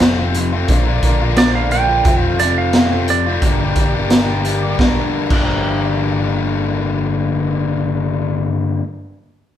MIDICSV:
0, 0, Header, 1, 7, 480
1, 0, Start_track
1, 0, Key_signature, -2, "minor"
1, 0, Tempo, 684932
1, 1438, Time_signature, 4, 2, 24, 8
1, 6707, End_track
2, 0, Start_track
2, 0, Title_t, "Electric slide guitar"
2, 0, Program_c, 0, 29
2, 967, Note_on_c, 0, 74, 88
2, 1079, Note_off_c, 0, 74, 0
2, 1089, Note_on_c, 0, 77, 70
2, 1200, Note_off_c, 0, 77, 0
2, 1204, Note_on_c, 0, 79, 103
2, 1554, Note_off_c, 0, 79, 0
2, 1554, Note_on_c, 0, 77, 103
2, 1665, Note_off_c, 0, 77, 0
2, 1679, Note_on_c, 0, 74, 72
2, 1795, Note_off_c, 0, 74, 0
2, 1808, Note_on_c, 0, 77, 80
2, 2151, Note_off_c, 0, 77, 0
2, 2173, Note_on_c, 0, 74, 84
2, 3337, Note_off_c, 0, 74, 0
2, 6707, End_track
3, 0, Start_track
3, 0, Title_t, "Steel-string acoustic guitar"
3, 0, Program_c, 1, 25
3, 26, Note_on_c, 1, 69, 72
3, 234, Note_off_c, 1, 69, 0
3, 242, Note_on_c, 1, 69, 59
3, 259, Note_on_c, 1, 65, 52
3, 268, Note_on_c, 1, 60, 50
3, 481, Note_off_c, 1, 69, 0
3, 485, Note_on_c, 1, 53, 57
3, 489, Note_off_c, 1, 60, 0
3, 490, Note_off_c, 1, 65, 0
3, 509, Note_on_c, 1, 70, 49
3, 720, Note_off_c, 1, 70, 0
3, 722, Note_off_c, 1, 53, 0
3, 728, Note_on_c, 1, 70, 52
3, 749, Note_on_c, 1, 53, 47
3, 963, Note_off_c, 1, 70, 0
3, 966, Note_off_c, 1, 53, 0
3, 975, Note_on_c, 1, 53, 81
3, 985, Note_on_c, 1, 70, 80
3, 1198, Note_off_c, 1, 70, 0
3, 1206, Note_off_c, 1, 53, 0
3, 1206, Note_on_c, 1, 70, 53
3, 1230, Note_on_c, 1, 53, 39
3, 1430, Note_off_c, 1, 53, 0
3, 1442, Note_off_c, 1, 70, 0
3, 1456, Note_on_c, 1, 69, 77
3, 1676, Note_off_c, 1, 69, 0
3, 1685, Note_on_c, 1, 69, 47
3, 1920, Note_off_c, 1, 69, 0
3, 1942, Note_on_c, 1, 69, 74
3, 2153, Note_off_c, 1, 69, 0
3, 2161, Note_on_c, 1, 69, 51
3, 2174, Note_on_c, 1, 65, 47
3, 2185, Note_on_c, 1, 60, 38
3, 2398, Note_off_c, 1, 69, 0
3, 2405, Note_off_c, 1, 65, 0
3, 2408, Note_off_c, 1, 60, 0
3, 2430, Note_on_c, 1, 70, 49
3, 2630, Note_off_c, 1, 70, 0
3, 2638, Note_on_c, 1, 70, 45
3, 2877, Note_off_c, 1, 70, 0
3, 2903, Note_on_c, 1, 70, 70
3, 3111, Note_off_c, 1, 70, 0
3, 3119, Note_on_c, 1, 70, 52
3, 3325, Note_on_c, 1, 43, 78
3, 3358, Note_off_c, 1, 70, 0
3, 3416, Note_on_c, 1, 58, 74
3, 3436, Note_on_c, 1, 62, 81
3, 3462, Note_on_c, 1, 70, 80
3, 3685, Note_off_c, 1, 43, 0
3, 3769, Note_off_c, 1, 58, 0
3, 3771, Note_on_c, 1, 58, 69
3, 3794, Note_off_c, 1, 62, 0
3, 3797, Note_on_c, 1, 62, 70
3, 3816, Note_off_c, 1, 70, 0
3, 3819, Note_on_c, 1, 70, 69
3, 6224, Note_off_c, 1, 58, 0
3, 6250, Note_off_c, 1, 62, 0
3, 6272, Note_off_c, 1, 70, 0
3, 6707, End_track
4, 0, Start_track
4, 0, Title_t, "Overdriven electric guitar"
4, 0, Program_c, 2, 29
4, 7, Note_on_c, 2, 41, 79
4, 11, Note_on_c, 2, 48, 93
4, 15, Note_on_c, 2, 53, 81
4, 18, Note_on_c, 2, 57, 92
4, 22, Note_on_c, 2, 60, 100
4, 26, Note_on_c, 2, 65, 92
4, 121, Note_off_c, 2, 65, 0
4, 127, Note_off_c, 2, 60, 0
4, 129, Note_on_c, 2, 65, 72
4, 132, Note_off_c, 2, 57, 0
4, 136, Note_on_c, 2, 60, 72
4, 139, Note_off_c, 2, 53, 0
4, 141, Note_on_c, 2, 57, 61
4, 148, Note_on_c, 2, 53, 58
4, 248, Note_off_c, 2, 53, 0
4, 248, Note_off_c, 2, 57, 0
4, 252, Note_off_c, 2, 60, 0
4, 252, Note_off_c, 2, 65, 0
4, 364, Note_off_c, 2, 41, 0
4, 366, Note_off_c, 2, 48, 0
4, 368, Note_on_c, 2, 65, 62
4, 377, Note_on_c, 2, 60, 60
4, 384, Note_on_c, 2, 57, 60
4, 386, Note_on_c, 2, 53, 47
4, 470, Note_off_c, 2, 65, 0
4, 475, Note_off_c, 2, 60, 0
4, 478, Note_off_c, 2, 57, 0
4, 479, Note_off_c, 2, 53, 0
4, 492, Note_on_c, 2, 46, 73
4, 499, Note_on_c, 2, 50, 70
4, 505, Note_on_c, 2, 58, 81
4, 508, Note_on_c, 2, 62, 78
4, 514, Note_on_c, 2, 65, 81
4, 602, Note_off_c, 2, 65, 0
4, 611, Note_on_c, 2, 65, 62
4, 613, Note_off_c, 2, 62, 0
4, 621, Note_on_c, 2, 62, 58
4, 623, Note_off_c, 2, 58, 0
4, 632, Note_on_c, 2, 58, 55
4, 724, Note_off_c, 2, 50, 0
4, 732, Note_on_c, 2, 50, 58
4, 733, Note_off_c, 2, 58, 0
4, 737, Note_off_c, 2, 62, 0
4, 742, Note_on_c, 2, 58, 68
4, 746, Note_on_c, 2, 62, 61
4, 747, Note_off_c, 2, 65, 0
4, 756, Note_on_c, 2, 65, 72
4, 845, Note_off_c, 2, 46, 0
4, 845, Note_off_c, 2, 65, 0
4, 853, Note_on_c, 2, 65, 62
4, 855, Note_off_c, 2, 62, 0
4, 863, Note_off_c, 2, 58, 0
4, 864, Note_on_c, 2, 62, 64
4, 871, Note_on_c, 2, 58, 64
4, 964, Note_off_c, 2, 50, 0
4, 965, Note_on_c, 2, 46, 88
4, 971, Note_off_c, 2, 58, 0
4, 972, Note_on_c, 2, 50, 81
4, 973, Note_off_c, 2, 62, 0
4, 979, Note_on_c, 2, 58, 94
4, 980, Note_off_c, 2, 65, 0
4, 981, Note_on_c, 2, 62, 105
4, 988, Note_on_c, 2, 65, 100
4, 1197, Note_off_c, 2, 50, 0
4, 1202, Note_off_c, 2, 58, 0
4, 1205, Note_on_c, 2, 50, 62
4, 1208, Note_off_c, 2, 62, 0
4, 1210, Note_on_c, 2, 58, 77
4, 1217, Note_off_c, 2, 65, 0
4, 1217, Note_on_c, 2, 62, 81
4, 1225, Note_on_c, 2, 65, 76
4, 1310, Note_off_c, 2, 65, 0
4, 1318, Note_on_c, 2, 65, 68
4, 1323, Note_off_c, 2, 62, 0
4, 1331, Note_on_c, 2, 62, 60
4, 1332, Note_off_c, 2, 58, 0
4, 1340, Note_on_c, 2, 58, 53
4, 1423, Note_off_c, 2, 65, 0
4, 1426, Note_off_c, 2, 46, 0
4, 1427, Note_off_c, 2, 50, 0
4, 1430, Note_off_c, 2, 62, 0
4, 1434, Note_off_c, 2, 58, 0
4, 1443, Note_on_c, 2, 41, 82
4, 1446, Note_on_c, 2, 48, 82
4, 1452, Note_on_c, 2, 53, 82
4, 1454, Note_on_c, 2, 57, 87
4, 1461, Note_on_c, 2, 60, 90
4, 1464, Note_on_c, 2, 65, 90
4, 1673, Note_off_c, 2, 53, 0
4, 1681, Note_on_c, 2, 53, 69
4, 1682, Note_off_c, 2, 57, 0
4, 1688, Note_off_c, 2, 60, 0
4, 1691, Note_on_c, 2, 57, 65
4, 1693, Note_off_c, 2, 65, 0
4, 1696, Note_on_c, 2, 60, 76
4, 1701, Note_on_c, 2, 65, 66
4, 1914, Note_off_c, 2, 41, 0
4, 1921, Note_off_c, 2, 48, 0
4, 1923, Note_off_c, 2, 53, 0
4, 1923, Note_on_c, 2, 41, 86
4, 1927, Note_off_c, 2, 57, 0
4, 1928, Note_on_c, 2, 48, 91
4, 1930, Note_off_c, 2, 60, 0
4, 1931, Note_on_c, 2, 53, 84
4, 1932, Note_off_c, 2, 65, 0
4, 1935, Note_on_c, 2, 57, 86
4, 1939, Note_on_c, 2, 60, 98
4, 1941, Note_on_c, 2, 65, 100
4, 2035, Note_off_c, 2, 65, 0
4, 2044, Note_on_c, 2, 65, 72
4, 2046, Note_off_c, 2, 60, 0
4, 2049, Note_off_c, 2, 57, 0
4, 2054, Note_on_c, 2, 60, 57
4, 2056, Note_off_c, 2, 53, 0
4, 2057, Note_on_c, 2, 57, 54
4, 2065, Note_on_c, 2, 53, 51
4, 2162, Note_off_c, 2, 53, 0
4, 2164, Note_off_c, 2, 57, 0
4, 2165, Note_off_c, 2, 60, 0
4, 2169, Note_off_c, 2, 65, 0
4, 2279, Note_off_c, 2, 41, 0
4, 2282, Note_off_c, 2, 48, 0
4, 2288, Note_on_c, 2, 65, 57
4, 2299, Note_on_c, 2, 60, 58
4, 2303, Note_on_c, 2, 57, 55
4, 2309, Note_on_c, 2, 53, 52
4, 2388, Note_off_c, 2, 65, 0
4, 2393, Note_off_c, 2, 60, 0
4, 2395, Note_off_c, 2, 57, 0
4, 2398, Note_off_c, 2, 53, 0
4, 2410, Note_on_c, 2, 43, 69
4, 2414, Note_on_c, 2, 50, 75
4, 2418, Note_on_c, 2, 55, 82
4, 2421, Note_on_c, 2, 58, 73
4, 2425, Note_on_c, 2, 62, 73
4, 2427, Note_on_c, 2, 67, 67
4, 2523, Note_off_c, 2, 67, 0
4, 2531, Note_off_c, 2, 62, 0
4, 2531, Note_on_c, 2, 67, 61
4, 2535, Note_off_c, 2, 58, 0
4, 2540, Note_on_c, 2, 62, 56
4, 2543, Note_off_c, 2, 55, 0
4, 2543, Note_on_c, 2, 58, 47
4, 2552, Note_on_c, 2, 55, 43
4, 2638, Note_off_c, 2, 55, 0
4, 2647, Note_on_c, 2, 55, 63
4, 2650, Note_off_c, 2, 58, 0
4, 2656, Note_off_c, 2, 62, 0
4, 2658, Note_on_c, 2, 58, 54
4, 2660, Note_off_c, 2, 67, 0
4, 2664, Note_on_c, 2, 62, 63
4, 2668, Note_on_c, 2, 67, 65
4, 2760, Note_off_c, 2, 67, 0
4, 2763, Note_off_c, 2, 43, 0
4, 2765, Note_off_c, 2, 50, 0
4, 2766, Note_off_c, 2, 62, 0
4, 2768, Note_on_c, 2, 67, 61
4, 2775, Note_off_c, 2, 58, 0
4, 2775, Note_on_c, 2, 62, 56
4, 2781, Note_off_c, 2, 55, 0
4, 2783, Note_on_c, 2, 58, 53
4, 2789, Note_on_c, 2, 55, 50
4, 2885, Note_on_c, 2, 43, 82
4, 2886, Note_off_c, 2, 55, 0
4, 2891, Note_off_c, 2, 58, 0
4, 2893, Note_on_c, 2, 50, 80
4, 2895, Note_on_c, 2, 55, 90
4, 2896, Note_off_c, 2, 62, 0
4, 2897, Note_off_c, 2, 67, 0
4, 2899, Note_on_c, 2, 58, 100
4, 2904, Note_on_c, 2, 62, 93
4, 2906, Note_on_c, 2, 67, 108
4, 3118, Note_off_c, 2, 55, 0
4, 3123, Note_off_c, 2, 58, 0
4, 3126, Note_on_c, 2, 55, 64
4, 3131, Note_off_c, 2, 62, 0
4, 3131, Note_on_c, 2, 58, 67
4, 3139, Note_off_c, 2, 67, 0
4, 3140, Note_on_c, 2, 62, 72
4, 3148, Note_on_c, 2, 67, 77
4, 3237, Note_off_c, 2, 67, 0
4, 3246, Note_on_c, 2, 67, 67
4, 3248, Note_off_c, 2, 62, 0
4, 3254, Note_off_c, 2, 58, 0
4, 3257, Note_on_c, 2, 62, 64
4, 3258, Note_off_c, 2, 55, 0
4, 3263, Note_on_c, 2, 58, 60
4, 3266, Note_on_c, 2, 55, 58
4, 3347, Note_off_c, 2, 43, 0
4, 3347, Note_off_c, 2, 67, 0
4, 3350, Note_off_c, 2, 50, 0
4, 3352, Note_off_c, 2, 62, 0
4, 3355, Note_off_c, 2, 58, 0
4, 3357, Note_off_c, 2, 55, 0
4, 3358, Note_on_c, 2, 43, 79
4, 3364, Note_on_c, 2, 50, 83
4, 3371, Note_on_c, 2, 55, 85
4, 3376, Note_on_c, 2, 58, 87
4, 3381, Note_on_c, 2, 62, 91
4, 3387, Note_on_c, 2, 70, 91
4, 3712, Note_off_c, 2, 43, 0
4, 3715, Note_on_c, 2, 43, 90
4, 3716, Note_off_c, 2, 50, 0
4, 3719, Note_on_c, 2, 50, 84
4, 3723, Note_off_c, 2, 55, 0
4, 3726, Note_on_c, 2, 55, 90
4, 3729, Note_off_c, 2, 58, 0
4, 3732, Note_on_c, 2, 58, 85
4, 3735, Note_off_c, 2, 62, 0
4, 3737, Note_off_c, 2, 70, 0
4, 3738, Note_on_c, 2, 62, 95
4, 3740, Note_on_c, 2, 70, 82
4, 6168, Note_off_c, 2, 43, 0
4, 6172, Note_off_c, 2, 50, 0
4, 6179, Note_off_c, 2, 55, 0
4, 6185, Note_off_c, 2, 58, 0
4, 6190, Note_off_c, 2, 62, 0
4, 6193, Note_off_c, 2, 70, 0
4, 6707, End_track
5, 0, Start_track
5, 0, Title_t, "Fingered electric bass"
5, 0, Program_c, 3, 33
5, 0, Note_on_c, 3, 29, 90
5, 453, Note_off_c, 3, 29, 0
5, 479, Note_on_c, 3, 34, 92
5, 705, Note_off_c, 3, 34, 0
5, 719, Note_on_c, 3, 34, 80
5, 1409, Note_off_c, 3, 34, 0
5, 1437, Note_on_c, 3, 29, 77
5, 2368, Note_off_c, 3, 29, 0
5, 2398, Note_on_c, 3, 31, 76
5, 2623, Note_off_c, 3, 31, 0
5, 2637, Note_on_c, 3, 31, 74
5, 3329, Note_off_c, 3, 31, 0
5, 3355, Note_on_c, 3, 31, 70
5, 3490, Note_off_c, 3, 31, 0
5, 3715, Note_on_c, 3, 31, 83
5, 5934, Note_off_c, 3, 31, 0
5, 6707, End_track
6, 0, Start_track
6, 0, Title_t, "Muted overdriven electric guitar strokes"
6, 257, Note_on_c, 9, 29, 44
6, 327, Note_off_c, 9, 29, 0
6, 2171, Note_on_c, 9, 29, 36
6, 2241, Note_off_c, 9, 29, 0
6, 6707, End_track
7, 0, Start_track
7, 0, Title_t, "Drums"
7, 0, Note_on_c, 9, 42, 64
7, 2, Note_on_c, 9, 38, 100
7, 70, Note_off_c, 9, 42, 0
7, 72, Note_off_c, 9, 38, 0
7, 242, Note_on_c, 9, 42, 52
7, 312, Note_off_c, 9, 42, 0
7, 478, Note_on_c, 9, 42, 63
7, 482, Note_on_c, 9, 36, 81
7, 548, Note_off_c, 9, 42, 0
7, 552, Note_off_c, 9, 36, 0
7, 720, Note_on_c, 9, 36, 63
7, 720, Note_on_c, 9, 42, 51
7, 790, Note_off_c, 9, 42, 0
7, 791, Note_off_c, 9, 36, 0
7, 957, Note_on_c, 9, 42, 78
7, 960, Note_on_c, 9, 38, 98
7, 1028, Note_off_c, 9, 42, 0
7, 1030, Note_off_c, 9, 38, 0
7, 1199, Note_on_c, 9, 42, 42
7, 1270, Note_off_c, 9, 42, 0
7, 1435, Note_on_c, 9, 42, 75
7, 1438, Note_on_c, 9, 36, 102
7, 1505, Note_off_c, 9, 42, 0
7, 1508, Note_off_c, 9, 36, 0
7, 1678, Note_on_c, 9, 42, 63
7, 1748, Note_off_c, 9, 42, 0
7, 1914, Note_on_c, 9, 42, 72
7, 1917, Note_on_c, 9, 38, 97
7, 1985, Note_off_c, 9, 42, 0
7, 1987, Note_off_c, 9, 38, 0
7, 2157, Note_on_c, 9, 42, 54
7, 2228, Note_off_c, 9, 42, 0
7, 2396, Note_on_c, 9, 42, 71
7, 2397, Note_on_c, 9, 36, 85
7, 2466, Note_off_c, 9, 42, 0
7, 2467, Note_off_c, 9, 36, 0
7, 2633, Note_on_c, 9, 42, 56
7, 2636, Note_on_c, 9, 36, 70
7, 2703, Note_off_c, 9, 42, 0
7, 2706, Note_off_c, 9, 36, 0
7, 2875, Note_on_c, 9, 42, 78
7, 2878, Note_on_c, 9, 38, 101
7, 2945, Note_off_c, 9, 42, 0
7, 2948, Note_off_c, 9, 38, 0
7, 3117, Note_on_c, 9, 42, 50
7, 3187, Note_off_c, 9, 42, 0
7, 3357, Note_on_c, 9, 36, 93
7, 3361, Note_on_c, 9, 38, 81
7, 3427, Note_off_c, 9, 36, 0
7, 3431, Note_off_c, 9, 38, 0
7, 3718, Note_on_c, 9, 36, 84
7, 3718, Note_on_c, 9, 49, 74
7, 3788, Note_off_c, 9, 36, 0
7, 3788, Note_off_c, 9, 49, 0
7, 6707, End_track
0, 0, End_of_file